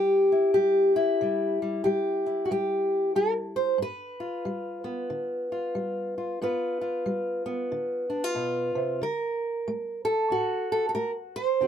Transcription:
0.00 0.49 G3 medium
0.00 0.30 E4 soft
0.00 0.54 G4 medium
0.32 0.95 E4 soft
0.54 1.15 G3 medium
0.54 1.59 G4 medium
0.96 2.25 E4 medium
1.21 1.80 C3 medium
1.21 1.62 G3 soft
1.62 1.85 G3 soft
1.84 2.45 G3 medium
1.84 2.49 G4 medium
2.26 3.77 E4 soft
2.45 2.50 F#4 medium
2.51 3.10 G3 medium
2.51 3.15 G4 medium
3.15 3.75 G3 medium
3.15 3.32 A#4 loud
3.56 3.80 C5 medium
3.78 4.39 G2 medium
3.82 6.42 B4 loud
4.20 5.50 F4 soft
4.45 5.05 G3 medium
4.84 6.40 B3 medium
5.10 5.70 D3 medium
5.52 6.16 F4 soft
5.75 6.35 G3 medium
6.18 6.38 F4 soft
6.42 7.01 G2 medium
6.42 7.45 B3 medium
6.42 6.80 F4 medium
6.42 9.00 B4 medium
6.81 8.09 F4 medium
7.06 7.66 G3 medium
7.46 9.01 B3 medium
7.72 8.31 D3 medium
8.10 8.24 D4 medium
8.24 9.01 F4 medium
8.35 8.75 B2 medium
8.75 9.01 C3 medium
9.01 9.62 D3 medium
9.01 10.04 A#4 loud
9.68 10.27 A3 medium
10.05 10.71 A4 medium
10.30 10.91 A2 medium
10.30 11.37 F#4 medium
10.72 10.88 A4 loud
10.89 10.94 A4 medium
10.95 11.56 A3 medium
10.95 11.11 A#4 medium
11.36 11.67 C5 loud
11.61 11.67 D3 medium
11.61 11.67 C4 soft
11.61 11.67 F#4 soft

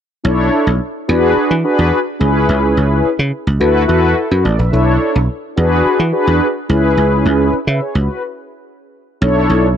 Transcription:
0.24 0.48 B1 medium
0.24 0.70 D4 medium
0.24 0.70 E4 medium
0.24 0.70 A4 medium
0.24 0.70 C#5 medium
0.67 0.79 B1 medium
1.08 1.33 E2 medium
1.08 1.53 D4 medium
1.08 1.53 F#4 medium
1.08 1.53 G#4 medium
1.08 1.53 B4 loud
1.37 muted slap bass stroke soft
1.51 1.63 E3 medium
1.64 1.99 D4 medium
1.64 1.99 F#4 medium
1.64 1.99 G#4 medium
1.64 1.99 B4 loud
1.79 1.91 E2 medium
2.19 2.44 C#2 medium
2.19 3.10 C#4 medium
2.19 3.10 E4 medium
2.19 3.10 G#4 medium
2.19 3.10 B4 medium
2.49 2.73 C#2 loud
2.77 3.01 C#2 medium
3.05 muted slap bass stroke soft
3.19 3.31 C#3 medium
3.47 3.59 C#2 medium
3.60 3.84 D2 loud
3.60 3.83 E4 medium
3.60 3.83 F#4 medium
3.60 3.83 A4 medium
3.60 3.83 B4 loud
3.87 4.13 E2 medium
3.87 4.15 E4 medium
3.87 4.16 F#4 medium
3.87 4.15 A4 medium
3.87 4.17 B4 loud
4.16 4.30 E4 medium
4.16 4.30 A4 medium
4.30 4.43 F#2 medium
4.30 4.44 F#4 medium
4.30 4.44 B4 medium
4.44 4.57 A1 medium
4.44 4.58 A4 medium
4.44 4.58 D5 medium
4.58 4.71 A#1 medium
4.58 4.85 B4 medium
4.58 4.85 E5 medium
4.72 4.97 B1 medium
4.72 5.18 D4 medium
4.72 5.18 E4 medium
4.72 5.18 A4 medium
4.72 5.18 C#5 medium
5.15 5.27 B1 medium
5.56 5.81 E2 medium
5.56 6.01 D4 medium
5.56 6.02 F#4 medium
5.56 6.02 G#4 medium
5.56 6.02 B4 loud
5.86 muted slap bass stroke soft
5.99 6.11 E3 medium
6.12 6.47 D4 medium
6.12 6.47 F#4 medium
6.12 6.47 G#4 medium
6.12 6.47 B4 loud
6.27 6.39 E2 medium
6.69 6.93 C#2 medium
6.69 7.59 C#4 medium
6.69 7.59 E4 medium
6.69 7.54 G#4 medium
6.69 7.54 B4 loud
6.97 7.21 C#2 loud
7.25 7.49 C#2 medium
7.53 muted slap bass stroke soft
7.67 7.79 C#3 medium
7.67 7.81 B4 medium
7.67 7.81 E5 medium
7.81 7.95 G#4 medium
7.81 7.95 C#5 medium
7.95 8.07 C#2 medium
7.95 8.23 F#4 medium
7.95 8.22 B4 medium
9.21 9.45 B1 loud
9.21 9.67 D4 medium
9.21 9.67 E4 medium
9.21 9.67 A4 medium
9.21 9.67 C#5 medium
9.50 9.73 B1 loud

